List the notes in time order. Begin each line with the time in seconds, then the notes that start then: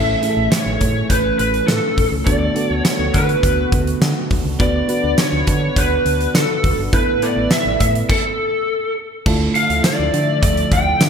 Already playing: A1 A2 E3 A3 C#4 E4 A4 E5
0.22 A3 C#4 E4 G#4, closed hi-hat
0.29 A4
0.37 A1
0.52 C#5, snare, closed hi-hat
0.66 A1
0.81 A2, kick, closed hi-hat
1.10 A1 B4, kick, closed hi-hat
1.39 A1 B4, closed hi-hat
1.54 closed hi-hat
1.67 A2 A4, snare, closed hi-hat
1.98 A1, kick, open hi-hat
2.12 C#2
2.26 D2 D3 B3 D4 F#4 A4 D5, kick, closed hi-hat
2.55 B3 D4 F#4 A4, closed hi-hat
2.70 D2 C#5
2.85 C#5, snare, closed hi-hat, tambourine
2.99 D2
3.14 D3 B4, kick, closed hi-hat
3.29 closed hi-hat
3.43 D2, kick, closed hi-hat
3.72 D2, kick, closed hi-hat
3.87 closed hi-hat
4.02 D3, snare, closed hi-hat, tambourine
4.30 D2, kick, open hi-hat
4.45 C#2
4.59 D2 D3 B3 D4 F#4 B4 D5, kick, closed hi-hat
4.88 B3 D4 F#4 B4, closed hi-hat
5.04 D2
5.18 C#5, snare, closed hi-hat, tambourine
5.33 D2
5.47 D3, kick, closed hi-hat
5.76 D2 B4, kick, closed hi-hat
6.06 D2, closed hi-hat
6.21 closed hi-hat
6.34 D3 A4, snare, closed hi-hat, tambourine
6.64 D2, kick, open hi-hat
6.78 G1
6.92 A1 A2 A3 B3 E4 A4 B4, kick, closed hi-hat
7.22 B3 E4 A4 D5, closed hi-hat
7.37 A1
7.51 E5, snare, closed hi-hat, tambourine
7.66 A1
7.80 A2 E5, kick, closed hi-hat
7.95 closed hi-hat
8.09 A4, kick, crash
9.26 D2 D3 F3 A3 D4 E4 F4 A4 E5, kick, crash
9.55 F5, closed hi-hat
9.70 D2, closed hi-hat
9.84 D5, snare, closed hi-hat, tambourine
9.99 D2
10.14 D3, closed hi-hat
10.43 D2 D5, kick, closed hi-hat
10.57 closed hi-hat
10.72 D2 G5, kick, closed hi-hat
11.01 D3, snare, closed hi-hat, tambourine